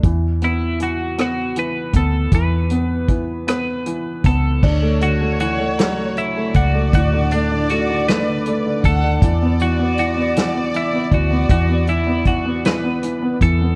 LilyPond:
<<
  \new Staff \with { instrumentName = "Violin section" } { \time 6/8 \key d \lydian \tempo 4. = 52 r2. | r2. | cis''2~ cis''8 d''8~ | d''2~ d''8 fis''8 |
d''2.~ | d''2~ d''8 r8 | }
  \new Staff \with { instrumentName = "Clean electric guitar" } { \time 6/8 \key d \lydian r8 e'8 fis'8 fis'8 b'8 a'8 | b'4. b'4 a'8~ | a'8 fis'8 fis'4 e'8 fis'8 | fis'8 d'8 fis'8 b'4 a'8~ |
a'8 fis'8 fis'4 e'8 fis'8 | fis'8 e'8 fis'8 b'4 a'8 | }
  \new Staff \with { instrumentName = "Felt piano" } { \time 6/8 \key d \lydian e8 b8 e8 b8 e8 b8 | e8 b8 e8 b8 e8 b8 | d'16 a16 d16 a16 e16 a16 fis16 a8 a8 a16 | a,16 d16 a16 d16 a16 d16 a16 d16 a16 d16 a16 d16 |
e16 b16 e16 b16 e16 b16 e16 b16 e16 b16 e16 b16 | e16 b16 e16 b16 e16 b16 e16 b16 e16 b16 e16 b16 | }
  \new Staff \with { instrumentName = "Fingered electric bass" } { \clef bass \time 6/8 \key d \lydian e,2~ e,8 d,8 | e,2~ e,8 cis,8 | d,2~ d,8 cis,8 | d,2~ d,8 d,8 |
e,2~ e,8 d,8 | e,2~ e,8 e,8 | }
  \new DrumStaff \with { instrumentName = "Drums" } \drummode { \time 6/8 <hh bd>8 hh8 hh8 <hh ss>8 hh8 <hh bd>8 | <hh bd>8 hh8 <hh bd>8 <hh ss>8 hh8 <hh bd>8 | <cymc bd>8 hh8 hh8 <hh sn>8 hh8 <hh bd>8 | <hh bd>8 hh8 hh8 <hh sn>8 hh8 <hh bd>8 |
<hh bd>8 hh8 hh8 <hh sn>8 hh8 <hh bd>8 | <hh bd>8 hh8 <hh bd>8 <hh sn>8 hh8 <hh bd>8 | }
>>